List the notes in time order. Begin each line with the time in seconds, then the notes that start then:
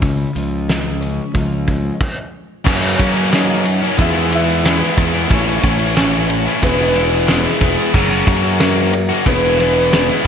Already playing: C#2
0.02 C#3, kick, open hi-hat
0.36 C#2 F3, open hi-hat
0.69 G#3, snare, open hi-hat
1.01 C#4, open hi-hat
1.34 C#2 F3, kick, open hi-hat
1.67 G#3, kick, open hi-hat
2.01 kick, crash
2.65 F#2 C#3 F#3 A#3 C#4, kick, crash
2.82 F#3 A#3 C#4
2.97 C#3 F#3 A#3 C#4, kick, ride
3.15 F#3 A#3 C#4
3.30 F#2 C#3 F#3 A#3 C#4 D#4, snare, ride
3.34 D#5
3.64 muted distorted electric guitar stroke, muted overdriven electric guitar stroke, ride
3.81 F#3 A#3 C#4
3.97 E2 E3 G#3 B3 E4 E5, kick, ride
4.14 G#3 B3 E4
4.30 E3 G#3 B3 E4, ride
4.34 E5
4.64 E3 G#3 B3 E4, snare, ride
4.80 G#3 B3 E4
4.97 E2 E3 G#3 B3 E4, kick, ride
5.14 G#3 B3 E4
5.29 A1 A2 E3 A3 C#4 E4, kick, ride
5.34 C#5
5.46 A3 C#4 E4
5.63 A1 E3 A3 C#4 E4, kick, ride
5.79 A3 C#4 E4
5.95 A2 E3 A3 C#4 E4 C#5, snare, ride
6.29 muted distorted electric guitar stroke, muted overdriven electric guitar stroke, ride
6.45 A3 C#4 E4
6.61 E1 E3 G#3 B3 E4 B4, kick, ride
6.78 G#3 B3 E4
6.94 E3 G#3 B3 E4, ride
7.27 E3 G#3 B3 E4 G#4, snare, ride
7.44 G#3 B3 E4
7.61 E1 E3 G#3 B3 E4, kick, ride
7.77 G#3 B3 E4
7.93 F#1 F#3 A#3 C#4 F#4, kick, crash
8.10 A#3 C#4 F#4
8.25 F#2 F#3 A#3 C#4 F#4, kick, ride
8.43 A#3 C#4 F#4
8.59 F#3 A#3 C#4 F#4 A#4, snare, ride
8.92 muted distorted electric guitar stroke, muted overdriven electric guitar stroke, ride
9.09 A#3 C#4 F#4
9.25 E1 E3 G#3 B3 E4 B4, kick, ride
9.43 G#3 B3 E4
9.59 E3 G#3 B3 E4 B4, ride
9.92 E3 G#3 B3 E4, snare, ride
10.09 G#3 B3 E4